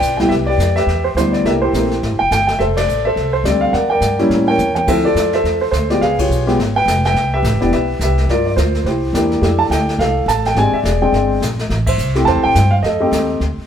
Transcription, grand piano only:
0.00 0.27 F4 soft
0.00 0.28 B4 medium
0.00 0.28 D5 medium
0.00 0.16 G5 medium
0.17 0.29 C2 soft
0.17 0.29 E3 soft
0.17 0.30 G3 soft
0.17 0.30 B3 soft
0.17 0.30 E4 medium
0.17 0.29 G5 medium
0.29 0.47 G4 medium
0.29 0.47 B4 medium
0.29 0.34 E5 medium
0.46 0.76 G4 medium
0.46 0.77 B4 medium
0.46 0.76 D5 medium
0.76 1.30 G4 medium
0.76 1.30 B4 medium
0.76 1.05 E5 medium
1.04 1.09 C5 medium
1.17 1.44 E3 medium
1.17 1.45 G3 medium
1.17 1.45 B3 soft
1.17 1.44 D4 medium
1.17 1.32 C5 medium
1.33 1.45 D5 medium
1.45 1.60 E3 soft
1.45 1.61 A3 soft
1.45 1.60 A#3 soft
1.45 1.61 D4 soft
1.45 1.62 G4 medium
1.45 1.99 A#4 medium
1.45 1.51 E5 medium
1.62 2.16 E4 medium
1.62 2.16 G4 medium
1.62 2.21 C5 medium
1.74 1.89 E3 soft
1.74 1.89 A3 soft
1.74 1.89 A#3 soft
1.74 1.89 C4 medium
2.19 2.31 G5 medium
2.32 2.46 G5 medium
2.47 2.59 G5 medium
2.59 2.77 A4 medium
2.59 3.06 C5 medium
2.59 2.64 E5 medium
2.77 3.05 A4 medium
2.77 3.06 D5 medium
3.05 3.59 A4 medium
3.05 3.32 C5 medium
3.05 3.34 E5 medium
3.33 3.45 C5 medium
3.45 3.73 G3 medium
3.45 3.73 A3 soft
3.45 3.74 C4 medium
3.45 3.74 D4 medium
3.45 3.62 D5 medium
3.61 3.73 F5 medium
3.73 3.90 A#4 medium
3.73 3.90 D5 medium
3.73 3.91 F#5 medium
3.90 4.44 A#4 medium
3.90 4.28 D5 medium
3.90 4.46 G5 medium
4.19 4.57 G3 medium
4.19 4.57 A#3 medium
4.19 4.57 C#4 medium
4.19 4.57 E4 medium
4.48 4.86 A#4 medium
4.48 4.86 C#5 medium
4.48 4.74 G5 loud
4.75 4.86 G5 medium
4.88 5.03 F3 medium
4.88 5.03 A3 soft
4.88 5.03 C4 medium
4.88 5.03 E4 medium
4.88 5.05 A4 medium
4.88 5.34 C5 medium
4.88 5.05 E5 medium
5.05 5.58 F4 medium
5.05 5.34 A4 medium
5.05 5.34 D5 medium
5.34 5.87 A4 medium
5.34 5.60 C5 medium
5.34 5.62 E5 medium
5.61 5.66 C5 medium
5.71 5.89 C5 medium
5.90 6.00 G#3 medium
5.90 6.00 B3 medium
5.90 6.01 F4 medium
5.90 6.01 G4 medium
5.90 6.02 D5 medium
6.01 6.55 G#4 medium
6.01 6.55 B4 medium
6.01 6.17 F5 medium
6.19 6.45 F4 medium
6.19 6.46 G4 soft
6.19 6.77 C#5 medium
6.47 6.57 G#3 medium
6.47 6.57 B3 medium
6.47 6.57 F4 medium
6.47 6.57 G4 medium
6.76 7.05 B4 medium
6.76 7.02 G5 loud
7.06 7.34 B4 medium
7.06 7.32 E5 medium
7.06 7.34 G5 loud
7.34 7.60 G4 medium
7.34 7.72 B4 medium
7.34 7.59 E5 medium
7.61 7.71 B3 medium
7.61 7.71 D4 medium
7.61 7.71 E4 medium
7.61 7.71 G4 medium
7.61 7.73 D5 medium
7.73 8.02 G4 medium
7.73 8.02 B4 medium
7.73 8.02 E5 medium
8.03 8.29 G4 medium
8.03 8.29 B4 medium
8.03 8.31 E5 medium
8.30 8.55 F4 medium
8.30 8.83 A#4 medium
8.30 8.45 D5 medium
8.46 8.51 D5 medium
8.56 8.83 F4 soft
8.56 8.85 C5 medium
8.86 9.13 E4 soft
8.86 9.13 G4 soft
8.86 9.28 C5 medium
9.14 9.42 A#3 medium
9.14 9.41 D4 soft
9.14 9.41 E4 medium
9.14 9.41 G4 medium
9.42 10.21 A3 soft
9.42 10.21 D4 soft
9.42 10.21 E4 soft
9.42 10.21 G4 medium
9.59 9.64 A5 medium
9.71 9.97 G5 medium
9.99 10.53 A4 medium
9.99 10.29 F5 medium
10.28 10.45 A5 medium
10.46 10.56 G5 medium
10.57 10.72 G#3 medium
10.57 10.72 C4 soft
10.57 10.72 D4 medium
10.57 10.72 G4 medium
10.57 10.83 D5 medium
10.57 10.75 G#5 medium
10.74 10.79 E5 medium
10.85 11.38 G#4 soft
10.85 11.38 D5 medium
11.02 11.39 G#3 medium
11.02 11.39 C4 medium
11.02 11.39 D4 medium
11.02 11.39 G5 medium
11.87 12.27 C5 medium
11.87 12.24 E5 medium
12.16 12.53 A3 medium
12.16 12.53 C4 medium
12.16 12.53 E4 soft
12.16 12.53 G4 medium
12.25 12.80 C5 medium
12.25 12.42 A5 loud
12.43 12.70 G5 loud
12.71 12.76 F5 medium
12.83 13.38 A4 medium
12.83 13.36 D#5 medium
13.00 13.38 A3 medium
13.00 13.39 C4 medium
13.00 13.38 D#4 medium
13.00 13.39 G4 medium

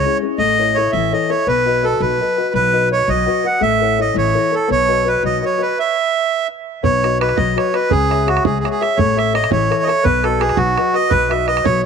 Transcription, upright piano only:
0.00 0.21 G#3 medium
0.04 0.20 C#4 medium
0.04 0.21 E4 soft
0.04 0.20 G#4 medium
0.22 0.35 C#4 soft
0.22 0.36 E4 soft
0.22 0.36 G#4 medium
0.38 0.74 A3 medium
0.58 0.75 E4 soft
0.58 0.75 A4 soft
0.58 0.76 C#5 medium
0.76 1.05 E4 medium
0.76 1.06 A4 soft
0.76 1.06 C#5 soft
0.94 1.29 E3 medium
1.12 1.28 E4 soft
1.12 1.28 A4 medium
1.12 1.28 C#5 medium
1.29 1.43 E4 medium
1.29 1.43 A4 soft
1.29 1.43 C#5 medium
1.47 1.83 B3 medium
1.65 1.81 F#4 medium
1.65 1.81 B4 soft
1.65 1.81 D#5 medium
1.82 2.12 F#4 soft
1.82 2.13 B4 soft
1.82 2.13 D#5 medium
2.00 2.36 F#3 medium
2.20 2.36 F#4 soft
2.20 2.35 B4 soft
2.20 2.36 D#5 medium
2.37 2.67 F#4 soft
2.37 2.67 B4 soft
2.37 2.67 D#5 medium
2.53 2.90 F#3 medium
2.73 2.89 F#4 soft
2.73 2.89 B4 soft
2.73 2.90 D#5 medium
2.90 3.20 F#4 soft
2.90 3.20 B4 soft
2.90 3.21 D#5 medium
3.08 3.44 F#3 medium
3.26 3.42 F#4 medium
3.26 3.42 B4 soft
3.26 3.43 D#5 medium
3.44 3.58 F#4 medium
3.44 3.58 B4 soft
3.44 3.58 D#5 medium
3.60 3.97 A3 medium
3.80 3.97 E4 soft
3.80 3.97 A4 soft
3.80 3.97 C#5 medium
3.98 4.28 E4 medium
3.98 4.28 A4 soft
3.98 4.28 C#5 medium
4.14 4.51 E3 medium
4.34 4.49 E4 medium
4.34 4.50 A4 soft
4.34 4.50 C#5 medium
4.51 4.65 E4 medium
4.51 4.65 A4 soft
4.51 4.66 C#5 medium
4.68 5.04 B3 medium
4.88 5.03 F#4 soft
4.88 5.03 B4 soft
4.88 5.04 D#5 medium
5.04 5.35 F#4 medium
5.04 5.35 B4 medium
5.04 5.35 D#5 medium
5.23 5.59 F#3 medium
5.42 5.56 F#4 medium
5.42 5.57 B4 soft
5.42 5.57 D#5 medium
5.57 5.72 F#4 soft
5.57 5.73 B4 soft
5.57 5.73 D#5 medium
6.83 7.19 B3 medium
7.03 7.18 F#4 medium
7.03 7.19 B4 soft
7.03 7.19 D#5 medium
7.19 7.49 F#4 soft
7.19 7.50 B4 soft
7.19 7.50 D#5 medium
7.37 7.73 F#3 medium
7.56 7.71 F#4 medium
7.56 7.72 B4 soft
7.56 7.72 D#5 medium
7.73 7.87 F#4 soft
7.73 7.87 B4 soft
7.73 7.87 D#5 medium
7.89 8.26 C#4 medium
8.10 8.25 G#4 soft
8.10 8.25 C#5 soft
8.10 8.26 E5 medium
8.26 8.56 G#4 medium
8.26 8.56 C#5 soft
8.26 8.57 E5 medium
8.44 8.80 G#3 medium
8.63 8.79 G#4 soft
8.63 8.80 C#5 soft
8.63 8.80 E5 medium
8.81 8.95 G#4 medium
8.81 8.95 C#5 soft
8.81 8.95 E5 medium
8.98 9.34 A3 medium
9.16 9.32 A4 soft
9.16 9.33 C#5 soft
9.16 9.33 E5 medium
9.34 9.63 A4 medium
9.34 9.64 C#5 medium
9.50 9.86 E3 medium
9.70 9.86 A4 medium
9.70 9.86 C#5 medium
9.70 9.86 E5 medium
9.87 10.01 A4 soft
9.87 10.01 C#5 soft
9.87 10.02 E5 medium
10.04 10.40 B3 medium
10.24 10.39 F#4 medium
10.24 10.39 B4 soft
10.24 10.39 D#5 soft
10.40 10.70 F#4 soft
10.40 10.70 B4 soft
10.40 10.70 D#5 soft
10.57 10.93 F#3 medium
10.77 10.93 F#4 medium
10.77 10.93 B4 soft
10.77 10.93 D#5 medium
10.94 11.24 F#4 medium
10.94 11.24 B4 soft
10.94 11.24 D#5 medium
11.11 11.47 F#3 medium
11.30 11.46 F#4 medium
11.30 11.46 B4 soft
11.30 11.46 D#5 medium
11.47 11.77 F#4 medium
11.47 11.77 B4 soft
11.47 11.77 D#5 medium
11.65 11.86 F#3 medium

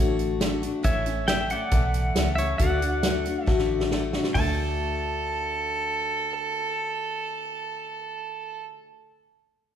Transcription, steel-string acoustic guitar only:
0.00 0.39 D3 medium
0.00 0.41 A3 medium
0.00 0.41 D4 medium
0.00 0.41 F#4 medium
0.40 0.62 D3 medium
0.40 0.62 A3 medium
0.40 0.62 D4 medium
0.40 0.60 F#4 medium
0.62 0.82 A3 soft
0.62 0.84 D4 soft
0.62 0.84 F#4 medium
0.83 1.05 A2 medium
0.83 1.05 E3 medium
0.83 1.06 A3 medium
0.83 1.06 C#4 medium
0.83 1.05 E4 medium
1.06 1.27 A3 soft
1.06 1.28 C#4 medium
1.06 1.28 E4 medium
1.28 1.50 E3 medium
1.28 1.50 A3 medium
1.28 1.50 C#4 medium
1.28 1.49 E4 medium
1.50 1.71 A3 soft
1.50 1.73 C#4 soft
1.50 1.72 E4 soft
1.72 2.16 A2 medium
1.72 2.14 E3 medium
1.72 2.16 A3 medium
1.72 2.16 E4 medium
2.15 2.37 E3 medium
2.15 2.38 A3 medium
2.15 2.37 C#4 medium
2.15 2.36 E4 medium
2.37 2.58 A3 soft
2.37 2.59 C#4 soft
2.37 2.59 E4 soft
2.58 2.81 D3 medium
2.58 2.81 A3 medium
2.58 2.81 D4 medium
2.58 2.80 F#4 medium
2.82 3.02 A3 soft
2.82 3.03 D4 soft
2.82 3.03 F#4 medium
3.03 3.25 D3 medium
3.03 3.25 A3 medium
3.03 3.25 D4 medium
3.03 3.24 F#4 medium
3.25 3.46 A3 soft
3.25 3.47 D4 soft
3.25 3.47 F#4 medium
3.46 3.90 D3 medium
3.46 3.91 A3 medium
3.46 3.91 D4 medium
3.46 3.91 F#4 medium
3.91 4.13 D3 medium
3.91 4.13 A3 medium
3.91 4.13 D4 medium
3.91 4.12 F#4 medium
4.13 4.36 A3 soft
4.13 4.35 D4 medium
4.13 4.35 F#4 medium
4.28 8.79 D3 medium
4.37 8.87 A3 medium
4.43 8.93 D4 medium
4.49 8.99 F#4 medium

